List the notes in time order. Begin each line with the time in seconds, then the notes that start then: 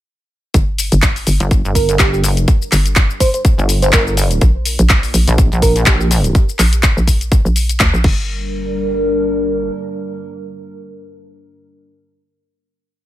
0.54 G1 G3 D4 A#4, kick, closed hi-hat, shaker
0.78 open hi-hat, shaker
0.92 G1, closed hi-hat, shaker
1.02 kick, clap, closed hi-hat, shaker
1.16 open hi-hat, shaker
1.27 G1, open hi-hat, shaker
1.40 G1, closed hi-hat, shaker
1.51 kick, closed hi-hat, shaker
1.65 G1, shaker
1.75 A#4, kick, open hi-hat, shaker
1.89 closed hi-hat, shaker
1.99 G1 G4, kick, clap, closed hi-hat, shaker
2.13 G4, shaker
2.24 open hi-hat, shaker
2.37 closed hi-hat, shaker
2.48 kick, closed hi-hat, shaker
2.62 shaker
2.72 G1, clap, open hi-hat, shaker
2.86 closed hi-hat, shaker
2.96 kick, clap, closed hi-hat, shaker
3.10 shaker
3.20 C5, kick, open hi-hat, shaker
3.34 C5, closed hi-hat, shaker
3.45 kick, closed hi-hat, shaker
3.58 G1, shaker
3.69 open hi-hat, shaker
3.82 C5, closed hi-hat, shaker
3.93 G1 A#4, kick, clap, closed hi-hat, shaker
4.07 A#4, shaker
4.17 open hi-hat, shaker
4.31 closed hi-hat, shaker
4.41 A#1 A#3 F4 D5, kick, closed hi-hat, shaker
4.65 open hi-hat, shaker
4.79 A#1, closed hi-hat, shaker
4.89 kick, clap, closed hi-hat, shaker
5.03 open hi-hat, shaker
5.14 A#1, open hi-hat, shaker
5.27 A#1, closed hi-hat, shaker
5.38 kick, closed hi-hat, shaker
5.52 A#1, shaker
5.62 A#4, kick, open hi-hat, shaker
5.76 closed hi-hat, shaker
5.86 A#1 G4, kick, clap, closed hi-hat, shaker
6.00 G4, shaker
6.11 open hi-hat, shaker
6.24 closed hi-hat, shaker
6.35 kick, closed hi-hat, shaker
6.49 shaker
6.59 A#1, clap, open hi-hat, shaker
6.73 closed hi-hat, shaker
6.83 kick, clap, closed hi-hat, shaker
6.97 A#1, shaker
7.07 kick, open hi-hat, shaker
7.21 closed hi-hat, shaker
7.32 kick, closed hi-hat, shaker
7.45 A#1, shaker
7.56 open hi-hat, shaker
7.69 closed hi-hat, shaker
7.80 D2, kick, clap, closed hi-hat, shaker
7.94 A#1, shaker
8.04 G1 G3 D4 A#4, kick, crash